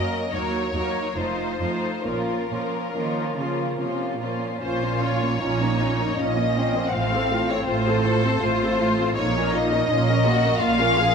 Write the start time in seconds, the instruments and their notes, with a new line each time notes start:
Already playing: viola section F#3 A#3, violin section C#4 A#4 D#5
0.33 cello section D#2, double bass section D#2, viola section F#3 A#3, violin section D#4 A#4 C#5
0.74 cello section D#2, viola section F#3 A#3, violin section D#4 A#4
1.16 double bass section F1, cello section F2, viola section F3 A3, violin section D#4 F4 C5
1.59 cello section F2, viola section F3 A3, violin section D#4 F4
2.04 double bass section A#1, cello section A#2, viola section F3 A#3, violin section C#4 F4 A#4
2.51 cello section A#2, viola section F3 A#3, violin section C#4 F4
2.94 cello section D#3, viola section F3 A#3, violin section C#4 F4
3.37 cello section C#3, viola section F3 A#3, violin section C#4 F4
3.78 cello section C3, viola section F3 A#3, violin section C#4 F4
4.21 cello section A#2, viola section F3 A#3, violin section C#4 F4
4.61 double bass section A#1, cello section A#2, viola section C#4 F4, violin section F4 C5
4.82 viola section A#3 C#4
5.01 viola section C#4 F4, violin section C#5
5.21 viola section A#3 C#4
5.41 double bass section A#1, cello section A#2, viola section C#4 F4, violin section D#4
5.61 viola section A#3 C#4
5.80 viola section C#4 F4
6.00 viola section A#3 C#4
6.17 double bass section A#1, cello section A#2, viola section C#4 F4, violin section C#4 D#5
6.37 viola section A#3 C#4
6.56 violin section C4, viola section C#4 F4
6.76 viola section A#3 C#4
6.88 violin section F#5
6.93 double bass section A1, cello section A2, viola section A3 F4, violin section F5
7.13 viola section C4 A4
7.32 viola section A3 F4
7.51 viola section C4 A4, violin section C#5
7.67 double bass section A1, cello section A2, viola section A3 F4, violin section F4 C5
7.87 viola section C4 A4
8.05 viola section A3 F4, violin section A4
8.25 viola section C4 A4
8.42 double bass section A1, cello section A2, viola section A3 F4, violin section F4
8.62 viola section C4 A4
8.80 viola section A3 F4
8.99 viola section C4 A4
9.16 double bass section A#1, cello section A#2, viola section A#3 F4, violin section D#4 C#5
9.36 viola section C#4 A#4
9.52 viola section A#3 F4, violin section D#5
9.73 viola section C#4 A#4
9.89 double bass section A#1, cello section A#2, viola section A#3 F4, violin section C#4
10.09 viola section C#4 A#4
10.25 viola section A#3 F4, violin section F#4
10.44 viola section C#4 A#4
10.59 double bass section A#1, cello section A#2, viola section A#3 F4, violin section F4 F5
10.79 viola section C#4 A#4
10.96 viola section A#3 F4, violin section G#4